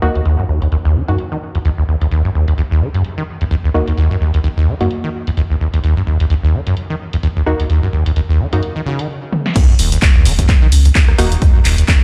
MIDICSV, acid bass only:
0, 0, Header, 1, 2, 480
1, 0, Start_track
1, 0, Tempo, 465116
1, 263, Time_signature, 4, 2, 24, 8
1, 12422, End_track
2, 0, Start_track
2, 0, Title_t, "Acid bass"
2, 0, Program_c, 0, 38
2, 24, Note_on_c, 0, 39, 73
2, 99, Note_off_c, 0, 39, 0
2, 160, Note_on_c, 0, 39, 76
2, 217, Note_off_c, 0, 39, 0
2, 264, Note_on_c, 0, 39, 96
2, 376, Note_off_c, 0, 39, 0
2, 401, Note_on_c, 0, 42, 76
2, 457, Note_off_c, 0, 42, 0
2, 504, Note_on_c, 0, 39, 73
2, 616, Note_off_c, 0, 39, 0
2, 640, Note_on_c, 0, 39, 72
2, 697, Note_off_c, 0, 39, 0
2, 743, Note_on_c, 0, 39, 92
2, 788, Note_off_c, 0, 39, 0
2, 880, Note_on_c, 0, 39, 97
2, 983, Note_on_c, 0, 51, 76
2, 999, Note_off_c, 0, 39, 0
2, 1059, Note_off_c, 0, 51, 0
2, 1120, Note_on_c, 0, 42, 71
2, 1205, Note_off_c, 0, 42, 0
2, 1360, Note_on_c, 0, 51, 73
2, 1417, Note_off_c, 0, 51, 0
2, 1600, Note_on_c, 0, 40, 76
2, 1634, Note_off_c, 0, 40, 0
2, 1704, Note_on_c, 0, 39, 98
2, 1749, Note_off_c, 0, 39, 0
2, 1840, Note_on_c, 0, 39, 72
2, 1897, Note_off_c, 0, 39, 0
2, 1943, Note_on_c, 0, 39, 72
2, 2018, Note_off_c, 0, 39, 0
2, 2079, Note_on_c, 0, 39, 77
2, 2137, Note_off_c, 0, 39, 0
2, 2182, Note_on_c, 0, 39, 92
2, 2295, Note_off_c, 0, 39, 0
2, 2319, Note_on_c, 0, 42, 73
2, 2376, Note_off_c, 0, 42, 0
2, 2423, Note_on_c, 0, 39, 72
2, 2536, Note_off_c, 0, 39, 0
2, 2560, Note_on_c, 0, 39, 76
2, 2617, Note_off_c, 0, 39, 0
2, 2663, Note_on_c, 0, 39, 92
2, 2708, Note_off_c, 0, 39, 0
2, 2799, Note_on_c, 0, 39, 96
2, 2902, Note_on_c, 0, 51, 72
2, 2918, Note_off_c, 0, 39, 0
2, 2978, Note_off_c, 0, 51, 0
2, 3039, Note_on_c, 0, 42, 74
2, 3125, Note_off_c, 0, 42, 0
2, 3279, Note_on_c, 0, 51, 76
2, 3337, Note_off_c, 0, 51, 0
2, 3519, Note_on_c, 0, 40, 70
2, 3554, Note_off_c, 0, 40, 0
2, 3623, Note_on_c, 0, 39, 92
2, 3668, Note_off_c, 0, 39, 0
2, 3760, Note_on_c, 0, 39, 78
2, 3817, Note_off_c, 0, 39, 0
2, 3863, Note_on_c, 0, 39, 75
2, 3938, Note_off_c, 0, 39, 0
2, 3999, Note_on_c, 0, 39, 79
2, 4057, Note_off_c, 0, 39, 0
2, 4103, Note_on_c, 0, 39, 98
2, 4216, Note_off_c, 0, 39, 0
2, 4239, Note_on_c, 0, 42, 73
2, 4297, Note_off_c, 0, 42, 0
2, 4343, Note_on_c, 0, 39, 71
2, 4456, Note_off_c, 0, 39, 0
2, 4480, Note_on_c, 0, 39, 74
2, 4537, Note_off_c, 0, 39, 0
2, 4583, Note_on_c, 0, 39, 100
2, 4628, Note_off_c, 0, 39, 0
2, 4720, Note_on_c, 0, 39, 97
2, 4824, Note_on_c, 0, 51, 69
2, 4839, Note_off_c, 0, 39, 0
2, 4899, Note_off_c, 0, 51, 0
2, 4960, Note_on_c, 0, 42, 72
2, 5045, Note_off_c, 0, 42, 0
2, 5200, Note_on_c, 0, 51, 74
2, 5257, Note_off_c, 0, 51, 0
2, 5440, Note_on_c, 0, 40, 70
2, 5474, Note_off_c, 0, 40, 0
2, 5544, Note_on_c, 0, 39, 96
2, 5589, Note_off_c, 0, 39, 0
2, 5679, Note_on_c, 0, 39, 77
2, 5737, Note_off_c, 0, 39, 0
2, 5783, Note_on_c, 0, 39, 75
2, 5858, Note_off_c, 0, 39, 0
2, 5920, Note_on_c, 0, 39, 78
2, 5977, Note_off_c, 0, 39, 0
2, 6023, Note_on_c, 0, 39, 95
2, 6136, Note_off_c, 0, 39, 0
2, 6160, Note_on_c, 0, 42, 72
2, 6217, Note_off_c, 0, 42, 0
2, 6264, Note_on_c, 0, 39, 70
2, 6376, Note_off_c, 0, 39, 0
2, 6400, Note_on_c, 0, 39, 76
2, 6457, Note_off_c, 0, 39, 0
2, 6504, Note_on_c, 0, 39, 94
2, 6549, Note_off_c, 0, 39, 0
2, 6640, Note_on_c, 0, 39, 101
2, 6744, Note_on_c, 0, 51, 71
2, 6760, Note_off_c, 0, 39, 0
2, 6819, Note_off_c, 0, 51, 0
2, 6881, Note_on_c, 0, 42, 72
2, 6966, Note_off_c, 0, 42, 0
2, 7120, Note_on_c, 0, 51, 73
2, 7177, Note_off_c, 0, 51, 0
2, 7361, Note_on_c, 0, 40, 73
2, 7395, Note_off_c, 0, 40, 0
2, 7464, Note_on_c, 0, 39, 94
2, 7509, Note_off_c, 0, 39, 0
2, 7601, Note_on_c, 0, 39, 76
2, 7657, Note_off_c, 0, 39, 0
2, 7704, Note_on_c, 0, 39, 76
2, 7779, Note_off_c, 0, 39, 0
2, 7840, Note_on_c, 0, 39, 77
2, 7897, Note_off_c, 0, 39, 0
2, 7944, Note_on_c, 0, 39, 93
2, 8056, Note_off_c, 0, 39, 0
2, 8080, Note_on_c, 0, 42, 72
2, 8137, Note_off_c, 0, 42, 0
2, 8184, Note_on_c, 0, 39, 76
2, 8296, Note_off_c, 0, 39, 0
2, 8320, Note_on_c, 0, 39, 75
2, 8377, Note_off_c, 0, 39, 0
2, 8423, Note_on_c, 0, 39, 93
2, 8468, Note_off_c, 0, 39, 0
2, 8559, Note_on_c, 0, 39, 99
2, 8663, Note_on_c, 0, 51, 73
2, 8679, Note_off_c, 0, 39, 0
2, 8738, Note_off_c, 0, 51, 0
2, 8799, Note_on_c, 0, 42, 74
2, 8885, Note_off_c, 0, 42, 0
2, 9039, Note_on_c, 0, 51, 72
2, 9096, Note_off_c, 0, 51, 0
2, 9143, Note_on_c, 0, 49, 90
2, 9280, Note_on_c, 0, 51, 72
2, 9295, Note_off_c, 0, 49, 0
2, 9365, Note_off_c, 0, 51, 0
2, 9863, Note_on_c, 0, 39, 103
2, 9976, Note_off_c, 0, 39, 0
2, 10000, Note_on_c, 0, 42, 74
2, 10057, Note_off_c, 0, 42, 0
2, 10103, Note_on_c, 0, 39, 74
2, 10216, Note_off_c, 0, 39, 0
2, 10240, Note_on_c, 0, 39, 81
2, 10297, Note_off_c, 0, 39, 0
2, 10343, Note_on_c, 0, 39, 105
2, 10388, Note_off_c, 0, 39, 0
2, 10480, Note_on_c, 0, 39, 106
2, 10583, Note_on_c, 0, 51, 78
2, 10599, Note_off_c, 0, 39, 0
2, 10658, Note_off_c, 0, 51, 0
2, 10720, Note_on_c, 0, 42, 78
2, 10806, Note_off_c, 0, 42, 0
2, 10960, Note_on_c, 0, 51, 80
2, 11017, Note_off_c, 0, 51, 0
2, 11200, Note_on_c, 0, 40, 74
2, 11234, Note_off_c, 0, 40, 0
2, 11304, Note_on_c, 0, 39, 105
2, 11349, Note_off_c, 0, 39, 0
2, 11440, Note_on_c, 0, 39, 83
2, 11497, Note_off_c, 0, 39, 0
2, 11544, Note_on_c, 0, 39, 78
2, 11619, Note_off_c, 0, 39, 0
2, 11680, Note_on_c, 0, 39, 79
2, 11737, Note_off_c, 0, 39, 0
2, 11784, Note_on_c, 0, 39, 101
2, 11896, Note_off_c, 0, 39, 0
2, 11921, Note_on_c, 0, 42, 76
2, 11977, Note_off_c, 0, 42, 0
2, 12023, Note_on_c, 0, 39, 75
2, 12136, Note_off_c, 0, 39, 0
2, 12160, Note_on_c, 0, 39, 77
2, 12217, Note_off_c, 0, 39, 0
2, 12264, Note_on_c, 0, 39, 101
2, 12309, Note_off_c, 0, 39, 0
2, 12422, End_track
0, 0, End_of_file